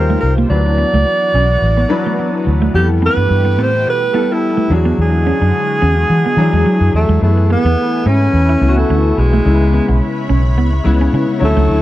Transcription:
Already playing: D#2 F3 G3 C4 D#4 F4 G4 A#4 C5
0.10 A3
0.20 C2 A#4, muted clean electric guitar stroke
0.38 A#3
0.49 D2 E3 F#3 B3 D4 E4 F#4 B4 D5
0.66 muted clean electric guitar stroke
0.78 B3
0.94 C#2 A3
1.34 B1 C#4
1.62 A1
1.77 B3
1.89 F#3 D4 E4 B4, muted clean electric guitar stroke
2.06 A3
2.19 B3
2.47 D2, muted clean electric guitar stroke
2.62 A3
2.73 F2 G3 A3 B3 E4 G4 A4
2.90 muted clean electric guitar stroke
3.02 C4 B4
3.17 G2 B3
3.29 G2, muted clean electric guitar stroke
3.45 B3
3.58 A2 C4
3.63 C5
3.87 B2 B4
4.13 G3 B3 E4 A4
4.32 E4
4.57 A3
4.69 E2 D3 F#3 G#3 D4 E4 F#4 G#4, muted clean electric guitar stroke
4.85 B3
4.98 E2 G#4
5.14 muted clean electric guitar stroke
5.27 C#4
5.41 F#2 D4
5.82 E2 C#4
6.10 E3
6.26 B3
6.37 E3 F#3 D4 E4 G#4, muted clean electric guitar stroke
6.53 E2 G#3
6.66 F#3
6.81 F#2
6.94 E2 A3, muted clean electric guitar stroke
7.09 E2 G#3
7.21 F#2 E3 A3 B3 E4 G#4 B4 G#5
7.37 muted clean electric guitar stroke
7.50 B3
7.64 E2 B3
8.06 G#2 C#4
8.33 E2
8.49 E4
8.61 C#2 E3 A3 B3 E4, muted clean electric guitar stroke
8.69 F#4
8.78 A3 C#4
8.90 D2 C#4
9.18 B1 G#3, muted clean electric guitar stroke
9.33 A3
9.44 C#2 C#3 G#3 B3 E4 C#5 B5
9.61 muted clean electric guitar stroke
9.74 B3
9.89 B1 B3
10.29 B1 C#4
10.57 C#2 B3
10.73 muted clean electric guitar stroke
10.84 C#2 C#3 G#3 B3 E4
11.01 C#4
11.13 C#3 C#4
11.39 D2 D3 F#3 C#4 E4 F#5, muted clean electric guitar stroke
11.44 A3
11.57 C#2 A3
11.69 D2

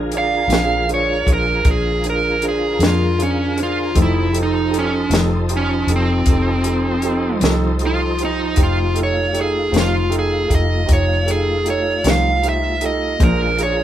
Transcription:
Already playing: A#1 D3 F4 G#4 A#4
0.12 D4 G#4 D5, closed hi-hat
0.18 F5
0.48 A#1 A#2 F3 G#3 D4, closed hi-hat
0.53 D4 G#4 C5, snare
0.88 D4 G#4 C5, closed hi-hat
0.94 C#5
1.27 A#1 D4 G#4 C5, kick, closed hi-hat
1.33 A#4
1.64 A#1 D4 G#4 C5, kick, closed hi-hat
1.71 G#4
2.04 D4 G#4 C5, closed hi-hat
2.10 A#4
2.42 D4 G#4 C5, closed hi-hat
2.49 G#4
2.79 F2 A#2 F3 G#3 D4 G#4 A#4, snare, closed hi-hat
2.86 F4
3.18 D4 G#4 C5, closed hi-hat
3.23 C#4
3.57 D4 G#4 C5, closed hi-hat
3.63 F4
3.94 F1 F2 D#3 F3 A3 C4 D#4 G4 A4 C5 D#5, kick, closed hi-hat
4.02 E4
4.32 D#4 G4 A4, closed hi-hat
4.43 D#4
4.70 D#4 G4 A4, closed hi-hat
4.79 C#4
5.09 F1 F2 D#3 A3 C4 D#4 G4 A4, closed hi-hat
5.14 snare
5.49 D#4 G4 C5, closed hi-hat
5.57 C#4
5.87 F1 D#4 G4 A4, closed hi-hat
5.96 C4
6.26 F1 D#4 G4 A4, kick, closed hi-hat
6.64 D#4 G4 A4, closed hi-hat
7.02 D#4 G4 A4, closed hi-hat
7.41 C2 F2 D#3 A3 C4 D#4 G4 A4, snare, closed hi-hat
7.79 D#4 G4 A4, closed hi-hat
7.86 F4
8.19 D#4 G4 C5, closed hi-hat
8.25 D#4
8.56 F1 A3 D#4 G4 C5, kick, closed hi-hat
8.60 F4
8.93 D#4 G4 A4, closed hi-hat
9.03 C#5
9.33 D#4 G4 A4, closed hi-hat
9.41 G#4
9.71 F1 F2 D#3 A3 C4 D#4 G4 C5, closed hi-hat
9.76 F4, snare
10.09 D#4 G4 A4, closed hi-hat
10.19 G#4
10.48 F1 D#4 G4 A4, kick, closed hi-hat
10.55 D#5
10.86 F1 D#4 G4 C5, kick, closed hi-hat
10.93 C#5
11.26 D#4 G4 A4, closed hi-hat
11.31 G#4
11.64 D#4 G4 A4, closed hi-hat
11.70 C#5
12.04 C2 F2 D#3 A3 C4 D#4 G4 C5, snare, closed hi-hat
12.10 F5
12.42 D#4 G4 C5, closed hi-hat
12.49 E5
12.80 D#4 G4 A4, closed hi-hat
12.86 D#5
13.19 A#1 A#2 F3 G#3 D4 F4 G#4 A#4 C5, kick, closed hi-hat
13.24 A#4
13.59 D4 G#4 C5, closed hi-hat
13.63 C#5

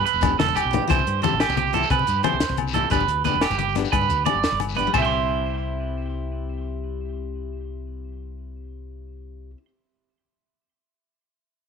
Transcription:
0.06 B4, closed hi-hat, low conga
0.13 E1, shekere
0.21 B3 D4 G4, kick, closed hi-hat, low conga, low agogo, shekere
0.39 E1 A4, snare, closed hi-hat, high conga
0.48 low conga
0.55 G4, closed hi-hat, low conga, low agogo, shekere
0.65 B1
0.71 B3 D4 G4, closed hi-hat, low conga
0.87 C2 E3 C4 E4 G4 C5, kick, closed hi-hat, high conga, low agogo, shekere
0.99 low conga, shekere
1.07 G2, closed hi-hat
1.22 E3 C4 E4 G4 A4, closed hi-hat, high conga, low conga, shekere
1.33 A1
1.40 G4, snare, closed hi-hat, low agogo, shekere
1.49 C2, low conga, shekere
1.57 G4, closed hi-hat, high conga
1.67 shekere
1.73 E3 C4 E4 G4 A4, closed hi-hat, low conga
1.83 shekere
1.90 C3 B4, kick, closed hi-hat, high conga, low agogo
1.99 low conga, shekere
2.07 G2, closed hi-hat, shekere
2.23 E3 C4 E4 G4 C5, closed hi-hat, high conga, low conga, low agogo
2.32 C2, low conga
2.40 snare, closed hi-hat, shekere
2.49 C2, low conga
2.57 closed hi-hat, high conga, low agogo
2.68 shekere
2.73 E3 C4 E4 G4 A4, closed hi-hat, low conga
2.90 G1 B3 D4 G4 B4, kick, closed hi-hat, high conga, low agogo, shekere
3.00 low conga, shekere
3.08 D2, closed hi-hat
3.24 B3 D4 G4 B4, closed hi-hat, high conga, low conga, shekere
3.33 E1, low conga
3.41 G4, snare, closed hi-hat, low agogo, shekere
3.50 G1, low conga, shekere
3.58 G4, closed hi-hat, high conga
3.69 shekere
3.75 B3 D4 G4, snare, closed hi-hat, low conga
3.85 shekere
3.92 G2 B4, kick, closed hi-hat, high conga, low agogo
4.01 low conga, shekere
4.09 D2, closed hi-hat, shekere
4.25 B3 D4 G4 D5, closed hi-hat, high conga, low conga, low agogo
4.34 G1
4.43 snare, closed hi-hat, shekere
4.51 G1, low conga
4.60 closed hi-hat, high conga, low agogo
4.69 shekere
4.75 B3 D4 G4 B4, closed hi-hat, low conga
4.87 G3
4.94 C2 C4 C5, kick, floor tom, china, high conga, low agogo, shekere
4.98 E4 E5
5.02 G4 G5 C6

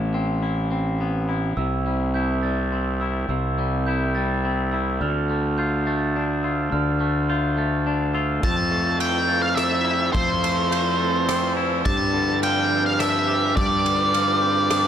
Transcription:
Already playing: A1 A2 B3 C4 E4
0.14 C4
0.43 E4
0.72 C4
1.01 B3
1.29 E4
1.57 C2 C3 E6
1.87 G3
2.14 E4 G6
2.43 G3 A6
2.72 C4
3.00 E4 E6
3.29 C2 C3 E6
3.58 G3
3.86 E4 G6
4.15 G3 A6
4.45 C4
4.72 E4 E6
5.01 D2 D3 F6
5.30 A3
5.58 F4 G6
5.87 A3 A6
6.16 D4
6.43 F4 E6
6.72 D2 D3 F6
7.00 A3
7.30 F4 G6
7.57 A3 A6
7.87 D4
8.14 F4 E6
8.43 F2 F3 C4 E4 A4 C5 A5 E6, kick, ride
8.71 A3
8.99 F3 G5 G6, ride
9.28 A3 A6
9.42 F5
9.56 C4 E5, cross-stick, ride
9.85 E4 E6
10.13 F2 F3 C5 E6, kick, ride
10.42 A3, ride
10.71 F3 G6, ride
10.99 A3 A6
11.28 C4, cross-stick, ride
11.57 E4 E6
11.85 G2 D4 G4 A5 D6, kick, ride
12.14 D3
12.42 F3 G5 F6, ride
12.70 C4 G6
12.86 F5
12.99 D4 E5, cross-stick, ride
13.28 G4 D6
13.55 G2 D5, kick, ride
13.85 D3, ride
14.12 F3 F6, ride
14.42 C4 G6
14.70 D4, cross-stick, ride

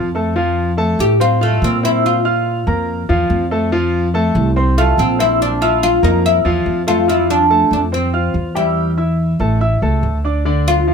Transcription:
Already playing: F2
0.15 A3 A4 A5
0.36 F3 F4 F5
0.77 A3 A4 A5
0.99 A2 G4
1.20 C4 F4 C5 C6
1.41 A3 F4 F5 F6
1.62 A#2 C4
1.83 C4 E4 C5 C6
2.06 F4
2.25 F4 F5 F6
2.67 F2 A#3 A#4 A#5
3.09 E2 F3 F4 F5
3.30 F2
3.51 A3 A4 A5
3.72 F3 F4 F5
4.14 A3 A4 A5
4.35 C2
4.56 C4 C5 C6
4.78 A3 F4 F5 F6
4.98 A#1 C4
5.19 C4 E4 C5 C6
5.42 D4
5.61 E4 F4 F5 F6
5.83 F4
6.03 F2 A#3 D#4 A#4 A#5
6.26 E4
6.45 E2 F3 F4 F5
6.66 F2
6.87 A3 F4 A4 A5
7.08 F3 E4 F4 F5
7.30 D4
7.50 A3 A4 A5
7.71 F2 D4
7.92 C4 C5 C6
8.13 F4 F5 F6
8.34 E2
8.55 G3 E4 G4 G5
8.97 E4 E5 E6
9.39 A1 A3 A4 A5
9.61 E4 E5 E6
9.82 C#2 A3 A4 A5
10.03 D2
10.24 D4 D5 D6
10.45 D3 D4 D5
10.68 F4
10.87 F3 F4 F5

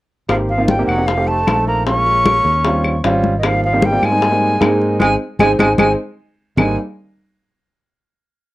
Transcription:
0.29 G#1 F3 A#3 C4 D#4 G4 F5, high bongo, high conga, claves
0.49 F3 F5, high conga
0.58 A#3 C4 D#4 F4
0.68 G3 G5, high bongo, high conga
0.79 A#3 C4 D#4 G4
0.86 F1 F#3 F#5, high conga, claves
0.98 A#3 C4 D#4 G4
1.07 F3 F5, high bongo, high conga
1.17 A3 C4 D#4 G4
1.27 A3 A5, high conga
1.47 A#1 A3 C4 D#4 A4, high bongo, low bongo, high conga, claves
1.67 A#3 A#5, high conga
1.86 G#3 A#3 C#4 F4 C#6, high bongo, high conga
2.06 high bongo, high conga
2.26 high bongo, high conga, claves
2.45 D#2, high bongo
2.64 G3 C4 C#4 F4, high bongo, high conga
2.84 high bongo, high conga, claves
3.04 G#1 G3 C4 C#4 F4, high bongo, low bongo, high conga
3.24 high conga
3.38 D#3 D#5
3.43 F3 G3 A#3 C4 D#4 F5, high bongo, high conga, claves
3.64 F3 F5, high conga
3.73 G3 A#3 C4 D#4
3.82 G3 G5, high bongo, high conga
3.92 G3 A#3 C4 F4
4.02 G#2 G#3 G#5, high conga, claves
4.12 G3 A#3 C4 D#4
4.22 high bongo, high conga
4.31 G3 A#3 C4 D#4
4.42 high conga
4.61 G#2 G#3 A#3 C4 D#4, high bongo, low bongo, high conga, claves
4.82 high conga
4.99 G#1 G#3 C4 D#4 G#5, high bongo, high conga, claves
5.39 G#1 G#3 C4 D#4 G#5, high bongo, high conga, claves
5.58 G#1 G#3 C4 D#4 G#5, high bongo, high conga, claves
5.78 G#1 G#3 C4 D#4 G#5, high bongo, high conga, claves
6.57 G#1 G3 G#3 A#3 C4 D#4 G#5, low bongo, low conga, claves

